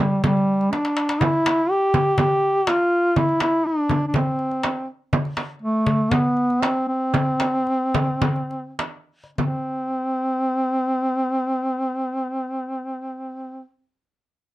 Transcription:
0.00 0.20 G3 medium
0.24 0.73 G3 medium
0.24 darbuka dum loud
0.24 frame drum medium
0.37 darbuka ka soft
0.61 darbuka ka soft
0.72 1.23 D4 medium
0.72 darbuka tek soft
0.72 frame drum medium
0.85 darbuka ka medium
0.97 darbuka tek medium
1.09 darbuka ka medium
1.21 1.72 E4 medium
1.21 darbuka dum medium
1.21 frame drum medium
1.34 darbuka ka soft
1.46 darbuka tek medium
1.46 frame drum medium
1.70 2.18 G4 loud
1.94 darbuka dum medium
1.94 frame drum medium
2.18 2.69 G4 medium
2.18 darbuka dum medium
2.18 frame drum medium
2.67 3.19 F4 medium
2.67 darbuka tek medium
2.67 frame drum medium
3.16 3.42 E4 medium
3.16 darbuka dum medium
3.16 frame drum medium
3.29 darbuka ka soft
3.40 3.68 E4 medium
3.40 darbuka tek medium
3.40 frame drum medium
3.67 4.07 D4 medium
3.89 darbuka dum medium
3.89 frame drum medium
4.08 4.17 D4 medium
4.14 4.89 C4 medium
4.14 darbuka dum medium
4.14 frame drum medium
4.39 darbuka ka soft
4.51 darbuka ka soft
4.63 darbuka tek medium
4.63 frame drum medium
5.13 darbuka dum medium
5.13 frame drum medium
5.25 darbuka ka soft
5.37 darbuka tek medium
5.37 frame drum medium
5.62 6.13 A3 medium
5.87 darbuka dum medium
6.11 6.64 B3 medium
6.11 darbuka dum loud
6.11 frame drum medium
6.37 darbuka ka soft
6.50 darbuka ka soft
6.62 6.88 C4 medium
6.62 darbuka tek medium
6.62 frame drum medium
6.88 8.75 C4 loud
7.14 frame drum medium
7.14 darbuka dum medium
7.40 darbuka tek medium
7.40 frame drum medium
7.67 darbuka ka soft
7.95 darbuka dum medium
7.95 frame drum medium
8.22 frame drum medium
8.22 darbuka dum loud
8.36 darbuka ka soft
8.51 darbuka ka soft
8.79 darbuka tek medium
8.79 frame drum medium
9.24 darbuka ka soft
9.38 13.66 C4 medium
9.38 darbuka dum medium
9.38 frame drum medium

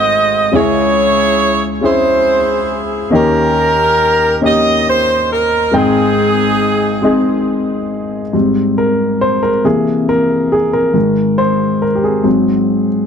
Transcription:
0.00 0.49 G#1 medium
0.00 0.49 G#2 medium
0.00 0.40 A3 medium
0.00 0.41 C4 medium
0.00 0.41 F#4 medium
0.00 0.50 F#4 medium
0.00 0.42 G#4 medium
0.00 0.50 C5 medium
0.00 0.54 D#5 loud
0.52 3.09 C#2 medium
0.52 3.09 C#3 medium
0.52 1.71 G#3 medium
0.52 1.71 C#4 medium
0.52 1.72 E4 medium
0.52 1.72 G#4 medium
0.56 1.68 E4 medium
0.56 1.68 G#4 medium
0.56 1.68 C#5 loud
1.81 3.00 G#3 medium
1.81 3.01 C#4 medium
1.81 3.01 E4 medium
1.81 3.02 G#4 medium
1.85 3.10 E4 medium
1.85 3.10 G#4 medium
1.85 2.82 C5 loud
3.10 5.69 D#2 medium
3.10 5.69 D#3 medium
3.10 4.30 A#3 medium
3.10 4.31 C#4 medium
3.10 4.31 D#4 medium
3.10 4.32 G4 medium
3.15 4.40 C#4 medium
3.15 4.40 G4 medium
3.15 4.40 A#4 loud
4.41 5.61 A#3 medium
4.41 5.61 C#4 medium
4.41 5.61 D#4 medium
4.41 5.62 G4 medium
4.46 4.88 D#5 loud
4.89 5.28 C5 medium
5.33 5.75 A#4 medium
5.71 8.30 G#1 medium
5.71 8.30 G#2 medium
5.71 6.91 G#3 medium
5.71 6.91 C4 medium
5.71 6.92 D#4 medium
5.71 7.44 D#4 medium
5.71 6.92 G5 medium
5.76 7.44 C4 medium
5.76 7.49 G#4 medium
7.02 8.21 G#3 medium
7.02 8.22 C4 medium
7.02 8.23 D#4 medium
7.02 8.23 G#4 medium
8.33 9.60 G#2 soft
8.33 9.60 G3 soft
8.33 9.61 C4 medium
8.78 9.23 A#4 medium
9.21 9.41 C5 medium
9.43 9.48 A#4 medium
9.64 10.91 C3 soft
9.64 10.91 E3 soft
9.64 10.92 A#3 medium
9.64 10.09 G#4 medium
10.09 10.53 A#4 medium
10.52 10.74 G#4 medium
10.73 11.41 A#4 medium
10.94 12.21 G#2 medium
10.94 12.21 D#3 soft
10.94 12.22 G#3 medium
11.38 11.83 C5 medium
11.82 11.87 A#4 medium
11.95 12.03 G4 soft
12.04 12.87 G#4 medium
12.24 13.06 G#2 medium
12.24 13.06 F#3 soft
12.24 13.06 C4 medium

